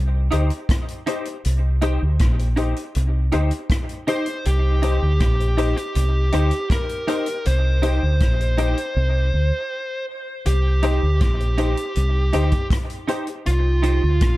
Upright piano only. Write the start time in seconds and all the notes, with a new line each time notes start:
0.32 D#4 G4 C5
1.07 D#4 G4 C5
1.27 G4 C5
1.82 D#4 G4 C5
2.39 G4 C5
2.57 D#4 G4 C5
3.32 D#4 G4 C5
4.07 D#4 G4 C5
4.27 G4 C5
4.83 D#4 G4 C5
5.40 G4 C5
5.58 D#4 G4 C5
6.33 D#4 G4 C5
7.07 D#4 G4 C5
7.27 G4 C5
7.83 D#4 G4 C5
8.40 G4 C5
8.58 D#4 G4 C5
10.83 D#4 G4 C5
11.40 G4 C5
11.58 D#4 G4 C5
12.33 D#4 G4 C5
13.08 D#4 G4 C5
13.28 G4 C5